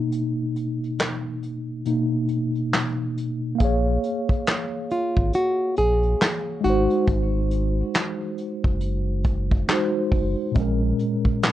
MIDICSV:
0, 0, Header, 1, 5, 480
1, 0, Start_track
1, 0, Key_signature, -5, "minor"
1, 0, Tempo, 869565
1, 66, Time_signature, 4, 2, 24, 8
1, 6359, End_track
2, 0, Start_track
2, 0, Title_t, "Nylon-string guitar"
2, 0, Program_c, 0, 24
2, 2713, Note_on_c, 0, 65, 93
2, 2951, Note_off_c, 0, 65, 0
2, 2953, Note_on_c, 0, 66, 107
2, 3173, Note_off_c, 0, 66, 0
2, 3191, Note_on_c, 0, 68, 112
2, 3666, Note_off_c, 0, 68, 0
2, 3668, Note_on_c, 0, 66, 97
2, 3914, Note_off_c, 0, 66, 0
2, 6359, End_track
3, 0, Start_track
3, 0, Title_t, "Tine electric piano"
3, 0, Program_c, 1, 4
3, 0, Control_c, 1, 64, 127
3, 0, Note_on_c, 1, 47, 49
3, 0, Note_on_c, 1, 58, 47
3, 0, Note_on_c, 1, 63, 59
3, 524, Note_off_c, 1, 47, 0
3, 526, Note_off_c, 1, 58, 0
3, 528, Note_off_c, 1, 63, 0
3, 1027, Note_on_c, 1, 47, 49
3, 1029, Note_on_c, 1, 58, 48
3, 1031, Note_on_c, 1, 63, 52
3, 1245, Note_off_c, 1, 47, 0
3, 1246, Note_off_c, 1, 58, 0
3, 1247, Note_off_c, 1, 63, 0
3, 1960, Note_on_c, 1, 58, 65
3, 1978, Note_on_c, 1, 77, 60
3, 1994, Control_c, 1, 64, 0
3, 1994, Note_on_c, 1, 68, 70
3, 2011, Note_on_c, 1, 73, 72
3, 2075, Control_c, 1, 64, 127
3, 3631, Note_off_c, 1, 58, 0
3, 3640, Note_off_c, 1, 77, 0
3, 3648, Note_off_c, 1, 68, 0
3, 3648, Note_on_c, 1, 56, 73
3, 3656, Note_off_c, 1, 73, 0
3, 3665, Note_on_c, 1, 63, 62
3, 3674, Control_c, 1, 64, 0
3, 3681, Note_on_c, 1, 66, 57
3, 3698, Note_on_c, 1, 72, 71
3, 3759, Control_c, 1, 64, 127
3, 5315, Note_off_c, 1, 56, 0
3, 5323, Note_off_c, 1, 63, 0
3, 5332, Note_off_c, 1, 66, 0
3, 5340, Note_off_c, 1, 72, 0
3, 5344, Note_on_c, 1, 56, 62
3, 5353, Note_on_c, 1, 63, 61
3, 5360, Note_on_c, 1, 66, 56
3, 5369, Note_on_c, 1, 72, 73
3, 5804, Note_on_c, 1, 46, 74
3, 5813, Note_off_c, 1, 56, 0
3, 5820, Note_on_c, 1, 56, 75
3, 5829, Note_off_c, 1, 63, 0
3, 5833, Note_off_c, 1, 66, 0
3, 5833, Control_c, 1, 64, 0
3, 5836, Note_on_c, 1, 61, 67
3, 5838, Note_off_c, 1, 72, 0
3, 5853, Note_on_c, 1, 70, 74
3, 5921, Control_c, 1, 64, 127
3, 6359, Note_off_c, 1, 46, 0
3, 6359, Note_off_c, 1, 56, 0
3, 6359, Note_off_c, 1, 61, 0
3, 6359, Note_off_c, 1, 70, 0
3, 6359, End_track
4, 0, Start_track
4, 0, Title_t, "Sub bass"
4, 0, Program_c, 2, 38
4, 1989, Note_on_c, 2, 34, 99
4, 2195, Note_off_c, 2, 34, 0
4, 2853, Note_on_c, 2, 32, 90
4, 2933, Note_off_c, 2, 32, 0
4, 3190, Note_on_c, 2, 34, 72
4, 3395, Note_off_c, 2, 34, 0
4, 3669, Note_on_c, 2, 32, 85
4, 3795, Note_off_c, 2, 32, 0
4, 3908, Note_on_c, 2, 32, 106
4, 4321, Note_off_c, 2, 32, 0
4, 4772, Note_on_c, 2, 30, 84
4, 5323, Note_off_c, 2, 30, 0
4, 5586, Note_on_c, 2, 30, 95
4, 5714, Note_off_c, 2, 30, 0
4, 5829, Note_on_c, 2, 34, 102
4, 6035, Note_off_c, 2, 34, 0
4, 6359, End_track
5, 0, Start_track
5, 0, Title_t, "Drums"
5, 66, Note_on_c, 9, 42, 73
5, 121, Note_off_c, 9, 42, 0
5, 308, Note_on_c, 9, 42, 54
5, 364, Note_off_c, 9, 42, 0
5, 461, Note_on_c, 9, 42, 32
5, 516, Note_off_c, 9, 42, 0
5, 545, Note_on_c, 9, 42, 72
5, 553, Note_on_c, 9, 38, 101
5, 556, Note_on_c, 9, 39, 95
5, 601, Note_off_c, 9, 42, 0
5, 609, Note_off_c, 9, 38, 0
5, 611, Note_off_c, 9, 39, 0
5, 787, Note_on_c, 9, 42, 50
5, 843, Note_off_c, 9, 42, 0
5, 1023, Note_on_c, 9, 42, 80
5, 1078, Note_off_c, 9, 42, 0
5, 1260, Note_on_c, 9, 42, 54
5, 1316, Note_off_c, 9, 42, 0
5, 1407, Note_on_c, 9, 42, 29
5, 1462, Note_off_c, 9, 42, 0
5, 1505, Note_on_c, 9, 42, 61
5, 1511, Note_on_c, 9, 38, 99
5, 1513, Note_on_c, 9, 39, 69
5, 1560, Note_off_c, 9, 42, 0
5, 1566, Note_off_c, 9, 38, 0
5, 1568, Note_off_c, 9, 39, 0
5, 1752, Note_on_c, 9, 42, 57
5, 1807, Note_off_c, 9, 42, 0
5, 1984, Note_on_c, 9, 42, 94
5, 1988, Note_on_c, 9, 36, 103
5, 2040, Note_off_c, 9, 42, 0
5, 2043, Note_off_c, 9, 36, 0
5, 2227, Note_on_c, 9, 42, 67
5, 2282, Note_off_c, 9, 42, 0
5, 2368, Note_on_c, 9, 36, 96
5, 2380, Note_on_c, 9, 42, 38
5, 2424, Note_off_c, 9, 36, 0
5, 2435, Note_off_c, 9, 42, 0
5, 2463, Note_on_c, 9, 42, 84
5, 2471, Note_on_c, 9, 38, 110
5, 2474, Note_on_c, 9, 39, 94
5, 2519, Note_off_c, 9, 42, 0
5, 2526, Note_off_c, 9, 38, 0
5, 2529, Note_off_c, 9, 39, 0
5, 2706, Note_on_c, 9, 42, 60
5, 2761, Note_off_c, 9, 42, 0
5, 2852, Note_on_c, 9, 36, 93
5, 2907, Note_off_c, 9, 36, 0
5, 2942, Note_on_c, 9, 42, 83
5, 2997, Note_off_c, 9, 42, 0
5, 3181, Note_on_c, 9, 42, 60
5, 3236, Note_off_c, 9, 42, 0
5, 3328, Note_on_c, 9, 42, 36
5, 3384, Note_off_c, 9, 42, 0
5, 3426, Note_on_c, 9, 42, 76
5, 3432, Note_on_c, 9, 38, 105
5, 3434, Note_on_c, 9, 39, 80
5, 3481, Note_off_c, 9, 42, 0
5, 3487, Note_off_c, 9, 38, 0
5, 3489, Note_off_c, 9, 39, 0
5, 3673, Note_on_c, 9, 42, 61
5, 3728, Note_off_c, 9, 42, 0
5, 3810, Note_on_c, 9, 42, 39
5, 3865, Note_off_c, 9, 42, 0
5, 3904, Note_on_c, 9, 42, 85
5, 3907, Note_on_c, 9, 36, 104
5, 3959, Note_off_c, 9, 42, 0
5, 3962, Note_off_c, 9, 36, 0
5, 4145, Note_on_c, 9, 42, 65
5, 4201, Note_off_c, 9, 42, 0
5, 4383, Note_on_c, 9, 42, 77
5, 4391, Note_on_c, 9, 38, 116
5, 4394, Note_on_c, 9, 39, 95
5, 4439, Note_off_c, 9, 42, 0
5, 4446, Note_off_c, 9, 38, 0
5, 4449, Note_off_c, 9, 39, 0
5, 4625, Note_on_c, 9, 42, 53
5, 4680, Note_off_c, 9, 42, 0
5, 4771, Note_on_c, 9, 36, 93
5, 4826, Note_off_c, 9, 36, 0
5, 4861, Note_on_c, 9, 42, 88
5, 4916, Note_off_c, 9, 42, 0
5, 5100, Note_on_c, 9, 42, 62
5, 5105, Note_on_c, 9, 36, 92
5, 5155, Note_off_c, 9, 42, 0
5, 5160, Note_off_c, 9, 36, 0
5, 5252, Note_on_c, 9, 36, 93
5, 5307, Note_off_c, 9, 36, 0
5, 5344, Note_on_c, 9, 42, 70
5, 5350, Note_on_c, 9, 38, 109
5, 5352, Note_on_c, 9, 39, 90
5, 5399, Note_off_c, 9, 42, 0
5, 5405, Note_off_c, 9, 38, 0
5, 5407, Note_off_c, 9, 39, 0
5, 5584, Note_on_c, 9, 36, 94
5, 5590, Note_on_c, 9, 46, 44
5, 5640, Note_off_c, 9, 36, 0
5, 5645, Note_off_c, 9, 46, 0
5, 5823, Note_on_c, 9, 42, 83
5, 5828, Note_on_c, 9, 36, 118
5, 5878, Note_off_c, 9, 42, 0
5, 5883, Note_off_c, 9, 36, 0
5, 6067, Note_on_c, 9, 42, 61
5, 6122, Note_off_c, 9, 42, 0
5, 6210, Note_on_c, 9, 36, 82
5, 6265, Note_off_c, 9, 36, 0
5, 6306, Note_on_c, 9, 42, 70
5, 6314, Note_on_c, 9, 38, 116
5, 6316, Note_on_c, 9, 39, 97
5, 6359, Note_off_c, 9, 38, 0
5, 6359, Note_off_c, 9, 39, 0
5, 6359, Note_off_c, 9, 42, 0
5, 6359, End_track
0, 0, End_of_file